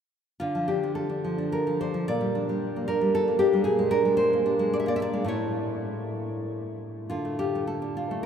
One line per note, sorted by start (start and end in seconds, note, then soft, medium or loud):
0.40 2.05 D3 soft
0.40 0.67 F4 medium
0.55 0.82 F3 soft
0.68 1.08 D4 soft
0.68 0.95 G4 soft
0.83 1.23 F3 soft
0.95 1.49 A4 medium
1.09 1.37 D4 soft
1.24 1.66 F3 soft
1.38 1.80 D4 soft
1.52 1.79 A#4 medium
1.67 1.93 F3 soft
1.81 2.09 D4 soft
1.81 2.07 C5 medium
1.94 2.08 F3 soft
2.08 3.62 A#2 soft
2.08 2.85 D5 medium
2.21 2.48 G3 soft
2.35 2.87 D4 soft
2.49 3.00 G3 soft
2.76 3.27 A#3 soft
2.88 3.39 D4 soft
2.88 3.13 A#4 medium
3.01 3.52 G3 soft
3.15 3.38 A4 medium
3.28 3.66 A#3 soft
3.39 3.66 D4 soft
3.39 3.64 G4 medium
3.53 3.66 G3 soft
3.64 5.25 A#2 soft
3.64 3.90 G#4 medium
3.79 4.04 G#3 soft
3.91 4.45 D4 soft
3.91 4.16 A#4 medium
4.05 4.58 G#3 soft
4.17 4.70 C5 medium
4.33 4.85 A#3 soft
4.46 4.99 D4 soft
4.59 5.12 G#3 soft
4.73 4.79 D5 medium
4.80 4.88 E5 medium
4.86 5.24 A#3 soft
4.86 4.96 D5 medium
4.96 5.27 D4 soft
4.96 5.02 E5 medium
5.02 5.27 D5 medium
5.13 5.25 G#3 soft
5.24 7.04 A2 soft
5.24 7.05 A3 soft
5.24 7.06 E4 soft
5.24 6.77 C#5 medium
7.10 8.26 D3 soft
7.10 7.38 F4 soft
7.25 7.54 A3 soft
7.39 7.95 F4 soft
7.39 7.66 G4 medium
7.55 7.81 A3 soft
7.67 8.21 A4 medium
7.82 8.26 D4 soft
7.97 8.26 F4 soft
8.11 8.26 A3 soft